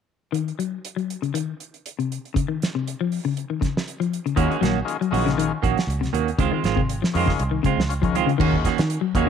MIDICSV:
0, 0, Header, 1, 6, 480
1, 0, Start_track
1, 0, Tempo, 502513
1, 323, Time_signature, 4, 2, 24, 8
1, 8875, End_track
2, 0, Start_track
2, 0, Title_t, "Transistor combo organ"
2, 0, Program_c, 0, 18
2, 4163, Note_on_c, 0, 51, 71
2, 4167, Note_on_c, 0, 61, 68
2, 4169, Note_on_c, 0, 56, 65
2, 4173, Note_on_c, 0, 65, 83
2, 4364, Note_off_c, 0, 51, 0
2, 4366, Note_off_c, 0, 61, 0
2, 4367, Note_off_c, 0, 56, 0
2, 4369, Note_off_c, 0, 65, 0
2, 4631, Note_on_c, 0, 51, 73
2, 4631, Note_on_c, 0, 56, 68
2, 4635, Note_on_c, 0, 61, 65
2, 4635, Note_on_c, 0, 65, 81
2, 4747, Note_off_c, 0, 51, 0
2, 4747, Note_off_c, 0, 56, 0
2, 4749, Note_off_c, 0, 61, 0
2, 4749, Note_off_c, 0, 65, 0
2, 4878, Note_on_c, 0, 56, 80
2, 4880, Note_on_c, 0, 65, 91
2, 4883, Note_on_c, 0, 51, 81
2, 4890, Note_on_c, 0, 61, 73
2, 5274, Note_off_c, 0, 56, 0
2, 5275, Note_off_c, 0, 65, 0
2, 5276, Note_off_c, 0, 51, 0
2, 5280, Note_off_c, 0, 61, 0
2, 6814, Note_on_c, 0, 61, 70
2, 6815, Note_on_c, 0, 51, 75
2, 6817, Note_on_c, 0, 56, 74
2, 6822, Note_on_c, 0, 65, 87
2, 7099, Note_off_c, 0, 61, 0
2, 7100, Note_off_c, 0, 51, 0
2, 7100, Note_off_c, 0, 56, 0
2, 7103, Note_off_c, 0, 65, 0
2, 7538, Note_on_c, 0, 61, 85
2, 7542, Note_on_c, 0, 65, 97
2, 7585, Note_off_c, 0, 61, 0
2, 7587, Note_off_c, 0, 65, 0
2, 7669, Note_on_c, 0, 56, 75
2, 7671, Note_on_c, 0, 51, 89
2, 7680, Note_on_c, 0, 65, 94
2, 7681, Note_on_c, 0, 61, 76
2, 7797, Note_off_c, 0, 56, 0
2, 7798, Note_off_c, 0, 51, 0
2, 7803, Note_off_c, 0, 61, 0
2, 7803, Note_off_c, 0, 65, 0
2, 8024, Note_on_c, 0, 56, 77
2, 8026, Note_on_c, 0, 51, 84
2, 8029, Note_on_c, 0, 61, 70
2, 8031, Note_on_c, 0, 65, 89
2, 8299, Note_off_c, 0, 56, 0
2, 8300, Note_off_c, 0, 51, 0
2, 8302, Note_off_c, 0, 61, 0
2, 8303, Note_off_c, 0, 65, 0
2, 8737, Note_on_c, 0, 51, 77
2, 8739, Note_on_c, 0, 61, 76
2, 8740, Note_on_c, 0, 56, 70
2, 8743, Note_on_c, 0, 65, 83
2, 8875, Note_off_c, 0, 51, 0
2, 8875, Note_off_c, 0, 56, 0
2, 8875, Note_off_c, 0, 61, 0
2, 8875, Note_off_c, 0, 65, 0
2, 8875, End_track
3, 0, Start_track
3, 0, Title_t, "Clean electric guitar"
3, 0, Program_c, 1, 27
3, 4166, Note_on_c, 1, 51, 65
3, 4171, Note_on_c, 1, 58, 68
3, 4175, Note_on_c, 1, 61, 77
3, 4175, Note_on_c, 1, 66, 75
3, 4288, Note_off_c, 1, 66, 0
3, 4291, Note_off_c, 1, 61, 0
3, 4296, Note_off_c, 1, 58, 0
3, 4300, Note_on_c, 1, 66, 45
3, 4302, Note_off_c, 1, 51, 0
3, 4302, Note_on_c, 1, 61, 43
3, 4307, Note_on_c, 1, 58, 36
3, 4406, Note_off_c, 1, 58, 0
3, 4406, Note_off_c, 1, 61, 0
3, 4411, Note_off_c, 1, 66, 0
3, 4415, Note_on_c, 1, 51, 58
3, 4417, Note_on_c, 1, 61, 60
3, 4418, Note_on_c, 1, 58, 52
3, 4422, Note_on_c, 1, 66, 61
3, 4569, Note_off_c, 1, 51, 0
3, 4570, Note_off_c, 1, 58, 0
3, 4570, Note_off_c, 1, 61, 0
3, 4573, Note_off_c, 1, 66, 0
3, 4893, Note_on_c, 1, 51, 53
3, 4895, Note_on_c, 1, 61, 56
3, 4899, Note_on_c, 1, 66, 62
3, 5048, Note_off_c, 1, 51, 0
3, 5049, Note_off_c, 1, 61, 0
3, 5051, Note_off_c, 1, 66, 0
3, 5369, Note_on_c, 1, 51, 60
3, 5374, Note_on_c, 1, 58, 60
3, 5382, Note_on_c, 1, 61, 59
3, 5384, Note_on_c, 1, 66, 69
3, 5526, Note_off_c, 1, 51, 0
3, 5528, Note_off_c, 1, 58, 0
3, 5532, Note_off_c, 1, 61, 0
3, 5533, Note_off_c, 1, 66, 0
3, 5855, Note_on_c, 1, 51, 62
3, 5855, Note_on_c, 1, 58, 60
3, 5860, Note_on_c, 1, 61, 57
3, 5860, Note_on_c, 1, 66, 61
3, 6008, Note_off_c, 1, 51, 0
3, 6008, Note_off_c, 1, 58, 0
3, 6010, Note_off_c, 1, 61, 0
3, 6010, Note_off_c, 1, 66, 0
3, 6103, Note_on_c, 1, 51, 75
3, 6105, Note_on_c, 1, 56, 81
3, 6114, Note_on_c, 1, 60, 76
3, 6116, Note_on_c, 1, 65, 82
3, 6222, Note_off_c, 1, 65, 0
3, 6230, Note_off_c, 1, 51, 0
3, 6230, Note_off_c, 1, 56, 0
3, 6233, Note_off_c, 1, 60, 0
3, 6234, Note_on_c, 1, 65, 46
3, 6244, Note_on_c, 1, 56, 39
3, 6244, Note_on_c, 1, 60, 40
3, 6340, Note_off_c, 1, 56, 0
3, 6341, Note_off_c, 1, 65, 0
3, 6344, Note_off_c, 1, 60, 0
3, 6346, Note_on_c, 1, 51, 55
3, 6352, Note_on_c, 1, 56, 61
3, 6355, Note_on_c, 1, 60, 63
3, 6357, Note_on_c, 1, 65, 64
3, 6492, Note_off_c, 1, 51, 0
3, 6495, Note_off_c, 1, 56, 0
3, 6497, Note_off_c, 1, 60, 0
3, 6498, Note_off_c, 1, 65, 0
3, 6837, Note_on_c, 1, 51, 57
3, 6837, Note_on_c, 1, 56, 60
3, 6846, Note_on_c, 1, 65, 58
3, 6849, Note_on_c, 1, 60, 66
3, 6977, Note_off_c, 1, 51, 0
3, 6977, Note_off_c, 1, 56, 0
3, 6981, Note_off_c, 1, 65, 0
3, 6983, Note_off_c, 1, 60, 0
3, 7310, Note_on_c, 1, 56, 56
3, 7316, Note_on_c, 1, 60, 70
3, 7317, Note_on_c, 1, 65, 62
3, 7452, Note_off_c, 1, 56, 0
3, 7455, Note_off_c, 1, 60, 0
3, 7455, Note_off_c, 1, 65, 0
3, 7781, Note_on_c, 1, 51, 54
3, 7788, Note_on_c, 1, 56, 61
3, 7792, Note_on_c, 1, 60, 68
3, 7797, Note_on_c, 1, 65, 68
3, 7925, Note_off_c, 1, 51, 0
3, 7929, Note_off_c, 1, 56, 0
3, 7931, Note_off_c, 1, 60, 0
3, 7933, Note_off_c, 1, 65, 0
3, 8025, Note_on_c, 1, 51, 73
3, 8029, Note_on_c, 1, 61, 79
3, 8030, Note_on_c, 1, 58, 73
3, 8035, Note_on_c, 1, 66, 80
3, 8166, Note_off_c, 1, 51, 0
3, 8168, Note_off_c, 1, 61, 0
3, 8169, Note_off_c, 1, 58, 0
3, 8172, Note_off_c, 1, 66, 0
3, 8268, Note_on_c, 1, 51, 60
3, 8271, Note_on_c, 1, 58, 69
3, 8275, Note_on_c, 1, 66, 70
3, 8279, Note_on_c, 1, 61, 61
3, 8407, Note_off_c, 1, 51, 0
3, 8409, Note_off_c, 1, 58, 0
3, 8411, Note_off_c, 1, 66, 0
3, 8413, Note_off_c, 1, 61, 0
3, 8739, Note_on_c, 1, 51, 54
3, 8749, Note_on_c, 1, 58, 67
3, 8753, Note_on_c, 1, 61, 63
3, 8756, Note_on_c, 1, 66, 71
3, 8875, Note_off_c, 1, 51, 0
3, 8875, Note_off_c, 1, 58, 0
3, 8875, Note_off_c, 1, 61, 0
3, 8875, Note_off_c, 1, 66, 0
3, 8875, End_track
4, 0, Start_track
4, 0, Title_t, "Clean electric guitar"
4, 0, Program_c, 2, 27
4, 309, Note_on_c, 2, 51, 67
4, 491, Note_off_c, 2, 51, 0
4, 562, Note_on_c, 2, 54, 56
4, 740, Note_off_c, 2, 54, 0
4, 921, Note_on_c, 2, 54, 52
4, 1104, Note_off_c, 2, 54, 0
4, 1168, Note_on_c, 2, 49, 57
4, 1253, Note_off_c, 2, 49, 0
4, 1281, Note_on_c, 2, 51, 66
4, 1461, Note_off_c, 2, 51, 0
4, 1898, Note_on_c, 2, 48, 52
4, 2076, Note_off_c, 2, 48, 0
4, 2237, Note_on_c, 2, 49, 71
4, 2339, Note_off_c, 2, 49, 0
4, 2373, Note_on_c, 2, 51, 62
4, 2554, Note_off_c, 2, 51, 0
4, 2627, Note_on_c, 2, 48, 62
4, 2803, Note_off_c, 2, 48, 0
4, 2872, Note_on_c, 2, 53, 55
4, 3046, Note_off_c, 2, 53, 0
4, 3103, Note_on_c, 2, 49, 66
4, 3281, Note_off_c, 2, 49, 0
4, 3343, Note_on_c, 2, 51, 51
4, 3426, Note_off_c, 2, 51, 0
4, 3449, Note_on_c, 2, 49, 64
4, 3629, Note_off_c, 2, 49, 0
4, 3821, Note_on_c, 2, 53, 58
4, 4000, Note_off_c, 2, 53, 0
4, 4067, Note_on_c, 2, 49, 58
4, 4149, Note_off_c, 2, 49, 0
4, 4168, Note_on_c, 2, 51, 68
4, 4348, Note_off_c, 2, 51, 0
4, 4403, Note_on_c, 2, 54, 65
4, 4586, Note_off_c, 2, 54, 0
4, 4786, Note_on_c, 2, 54, 59
4, 4964, Note_off_c, 2, 54, 0
4, 5025, Note_on_c, 2, 49, 69
4, 5108, Note_off_c, 2, 49, 0
4, 5139, Note_on_c, 2, 51, 73
4, 5315, Note_off_c, 2, 51, 0
4, 5740, Note_on_c, 2, 48, 59
4, 5919, Note_off_c, 2, 48, 0
4, 6098, Note_on_c, 2, 49, 78
4, 6193, Note_off_c, 2, 49, 0
4, 6225, Note_on_c, 2, 51, 66
4, 6401, Note_off_c, 2, 51, 0
4, 6457, Note_on_c, 2, 48, 67
4, 6636, Note_off_c, 2, 48, 0
4, 6707, Note_on_c, 2, 53, 60
4, 6882, Note_off_c, 2, 53, 0
4, 6929, Note_on_c, 2, 49, 67
4, 7110, Note_off_c, 2, 49, 0
4, 7175, Note_on_c, 2, 51, 57
4, 7258, Note_off_c, 2, 51, 0
4, 7289, Note_on_c, 2, 49, 69
4, 7465, Note_off_c, 2, 49, 0
4, 7659, Note_on_c, 2, 53, 60
4, 7834, Note_off_c, 2, 53, 0
4, 7894, Note_on_c, 2, 49, 67
4, 7976, Note_off_c, 2, 49, 0
4, 8005, Note_on_c, 2, 51, 74
4, 8181, Note_off_c, 2, 51, 0
4, 8608, Note_on_c, 2, 54, 58
4, 8784, Note_off_c, 2, 54, 0
4, 8875, End_track
5, 0, Start_track
5, 0, Title_t, "Fingered electric bass"
5, 0, Program_c, 3, 33
5, 4173, Note_on_c, 3, 39, 73
5, 4274, Note_off_c, 3, 39, 0
5, 4412, Note_on_c, 3, 34, 74
5, 4598, Note_off_c, 3, 34, 0
5, 4896, Note_on_c, 3, 34, 88
5, 5263, Note_off_c, 3, 34, 0
5, 5383, Note_on_c, 3, 34, 76
5, 5480, Note_off_c, 3, 34, 0
5, 5608, Note_on_c, 3, 37, 82
5, 5795, Note_off_c, 3, 37, 0
5, 5853, Note_on_c, 3, 39, 68
5, 6037, Note_off_c, 3, 39, 0
5, 6100, Note_on_c, 3, 37, 84
5, 6198, Note_off_c, 3, 37, 0
5, 6338, Note_on_c, 3, 32, 77
5, 6701, Note_off_c, 3, 32, 0
5, 6828, Note_on_c, 3, 41, 82
5, 7005, Note_off_c, 3, 41, 0
5, 7064, Note_on_c, 3, 36, 85
5, 7242, Note_off_c, 3, 36, 0
5, 7422, Note_on_c, 3, 37, 73
5, 7868, Note_off_c, 3, 37, 0
5, 8023, Note_on_c, 3, 39, 82
5, 8296, Note_off_c, 3, 39, 0
5, 8396, Note_on_c, 3, 51, 84
5, 8569, Note_off_c, 3, 51, 0
5, 8740, Note_on_c, 3, 39, 77
5, 8875, Note_off_c, 3, 39, 0
5, 8875, End_track
6, 0, Start_track
6, 0, Title_t, "Drums"
6, 327, Note_on_c, 9, 42, 53
6, 422, Note_off_c, 9, 42, 0
6, 459, Note_on_c, 9, 42, 27
6, 554, Note_off_c, 9, 42, 0
6, 571, Note_on_c, 9, 42, 43
6, 666, Note_off_c, 9, 42, 0
6, 808, Note_on_c, 9, 42, 59
6, 904, Note_off_c, 9, 42, 0
6, 940, Note_on_c, 9, 42, 24
6, 1036, Note_off_c, 9, 42, 0
6, 1053, Note_on_c, 9, 42, 49
6, 1149, Note_off_c, 9, 42, 0
6, 1178, Note_on_c, 9, 42, 28
6, 1273, Note_off_c, 9, 42, 0
6, 1290, Note_on_c, 9, 42, 66
6, 1386, Note_off_c, 9, 42, 0
6, 1531, Note_on_c, 9, 42, 46
6, 1627, Note_off_c, 9, 42, 0
6, 1662, Note_on_c, 9, 42, 27
6, 1758, Note_off_c, 9, 42, 0
6, 1774, Note_on_c, 9, 42, 59
6, 1870, Note_off_c, 9, 42, 0
6, 1908, Note_on_c, 9, 42, 29
6, 2004, Note_off_c, 9, 42, 0
6, 2023, Note_on_c, 9, 42, 43
6, 2119, Note_off_c, 9, 42, 0
6, 2153, Note_on_c, 9, 42, 26
6, 2248, Note_off_c, 9, 42, 0
6, 2256, Note_on_c, 9, 36, 78
6, 2258, Note_on_c, 9, 42, 59
6, 2352, Note_off_c, 9, 36, 0
6, 2354, Note_off_c, 9, 42, 0
6, 2505, Note_on_c, 9, 42, 47
6, 2516, Note_on_c, 9, 38, 62
6, 2600, Note_off_c, 9, 42, 0
6, 2612, Note_off_c, 9, 38, 0
6, 2746, Note_on_c, 9, 42, 61
6, 2842, Note_off_c, 9, 42, 0
6, 2979, Note_on_c, 9, 46, 53
6, 3074, Note_off_c, 9, 46, 0
6, 3219, Note_on_c, 9, 42, 58
6, 3315, Note_off_c, 9, 42, 0
6, 3458, Note_on_c, 9, 36, 62
6, 3463, Note_on_c, 9, 42, 40
6, 3474, Note_on_c, 9, 38, 23
6, 3554, Note_off_c, 9, 36, 0
6, 3558, Note_off_c, 9, 42, 0
6, 3570, Note_off_c, 9, 38, 0
6, 3603, Note_on_c, 9, 38, 58
6, 3699, Note_off_c, 9, 38, 0
6, 3703, Note_on_c, 9, 42, 54
6, 3799, Note_off_c, 9, 42, 0
6, 3836, Note_on_c, 9, 42, 26
6, 3932, Note_off_c, 9, 42, 0
6, 3949, Note_on_c, 9, 42, 43
6, 4044, Note_off_c, 9, 42, 0
6, 4075, Note_on_c, 9, 42, 27
6, 4171, Note_off_c, 9, 42, 0
6, 4176, Note_on_c, 9, 42, 64
6, 4177, Note_on_c, 9, 36, 77
6, 4271, Note_off_c, 9, 42, 0
6, 4272, Note_off_c, 9, 36, 0
6, 4312, Note_on_c, 9, 42, 26
6, 4408, Note_off_c, 9, 42, 0
6, 4420, Note_on_c, 9, 42, 46
6, 4432, Note_on_c, 9, 38, 63
6, 4516, Note_off_c, 9, 42, 0
6, 4527, Note_off_c, 9, 38, 0
6, 4663, Note_on_c, 9, 42, 59
6, 4758, Note_off_c, 9, 42, 0
6, 4797, Note_on_c, 9, 42, 28
6, 4892, Note_off_c, 9, 42, 0
6, 4910, Note_on_c, 9, 46, 59
6, 5005, Note_off_c, 9, 46, 0
6, 5042, Note_on_c, 9, 42, 28
6, 5053, Note_on_c, 9, 38, 25
6, 5138, Note_off_c, 9, 42, 0
6, 5149, Note_off_c, 9, 38, 0
6, 5153, Note_on_c, 9, 42, 66
6, 5248, Note_off_c, 9, 42, 0
6, 5382, Note_on_c, 9, 36, 63
6, 5387, Note_on_c, 9, 42, 47
6, 5477, Note_off_c, 9, 36, 0
6, 5483, Note_off_c, 9, 42, 0
6, 5517, Note_on_c, 9, 42, 28
6, 5529, Note_on_c, 9, 38, 64
6, 5613, Note_off_c, 9, 42, 0
6, 5624, Note_off_c, 9, 38, 0
6, 5635, Note_on_c, 9, 42, 56
6, 5730, Note_off_c, 9, 42, 0
6, 5763, Note_on_c, 9, 42, 30
6, 5774, Note_on_c, 9, 38, 23
6, 5858, Note_off_c, 9, 42, 0
6, 5869, Note_on_c, 9, 42, 47
6, 5870, Note_off_c, 9, 38, 0
6, 5964, Note_off_c, 9, 42, 0
6, 6000, Note_on_c, 9, 42, 32
6, 6095, Note_off_c, 9, 42, 0
6, 6100, Note_on_c, 9, 36, 90
6, 6101, Note_on_c, 9, 42, 69
6, 6195, Note_off_c, 9, 36, 0
6, 6196, Note_off_c, 9, 42, 0
6, 6341, Note_on_c, 9, 42, 46
6, 6353, Note_on_c, 9, 38, 63
6, 6437, Note_off_c, 9, 42, 0
6, 6448, Note_off_c, 9, 38, 0
6, 6469, Note_on_c, 9, 36, 57
6, 6564, Note_off_c, 9, 36, 0
6, 6585, Note_on_c, 9, 42, 64
6, 6681, Note_off_c, 9, 42, 0
6, 6724, Note_on_c, 9, 38, 58
6, 6820, Note_off_c, 9, 38, 0
6, 6828, Note_on_c, 9, 46, 61
6, 6924, Note_off_c, 9, 46, 0
6, 6951, Note_on_c, 9, 36, 55
6, 6963, Note_on_c, 9, 38, 26
6, 7046, Note_off_c, 9, 36, 0
6, 7059, Note_off_c, 9, 38, 0
6, 7063, Note_on_c, 9, 42, 66
6, 7159, Note_off_c, 9, 42, 0
6, 7301, Note_on_c, 9, 36, 64
6, 7303, Note_on_c, 9, 42, 46
6, 7397, Note_off_c, 9, 36, 0
6, 7398, Note_off_c, 9, 42, 0
6, 7449, Note_on_c, 9, 38, 62
6, 7545, Note_off_c, 9, 38, 0
6, 7548, Note_on_c, 9, 42, 60
6, 7644, Note_off_c, 9, 42, 0
6, 7671, Note_on_c, 9, 36, 59
6, 7676, Note_on_c, 9, 42, 29
6, 7767, Note_off_c, 9, 36, 0
6, 7771, Note_off_c, 9, 42, 0
6, 7788, Note_on_c, 9, 42, 46
6, 7883, Note_off_c, 9, 42, 0
6, 7920, Note_on_c, 9, 42, 27
6, 8015, Note_off_c, 9, 42, 0
6, 8023, Note_on_c, 9, 36, 82
6, 8029, Note_on_c, 9, 49, 69
6, 8118, Note_off_c, 9, 36, 0
6, 8125, Note_off_c, 9, 49, 0
6, 8151, Note_on_c, 9, 36, 62
6, 8247, Note_off_c, 9, 36, 0
6, 8260, Note_on_c, 9, 36, 61
6, 8261, Note_on_c, 9, 42, 53
6, 8273, Note_on_c, 9, 38, 26
6, 8355, Note_off_c, 9, 36, 0
6, 8357, Note_off_c, 9, 42, 0
6, 8368, Note_off_c, 9, 38, 0
6, 8388, Note_on_c, 9, 42, 49
6, 8399, Note_on_c, 9, 38, 63
6, 8483, Note_off_c, 9, 42, 0
6, 8494, Note_off_c, 9, 38, 0
6, 8500, Note_on_c, 9, 42, 73
6, 8596, Note_off_c, 9, 42, 0
6, 8738, Note_on_c, 9, 36, 63
6, 8740, Note_on_c, 9, 42, 50
6, 8833, Note_off_c, 9, 36, 0
6, 8836, Note_off_c, 9, 42, 0
6, 8875, End_track
0, 0, End_of_file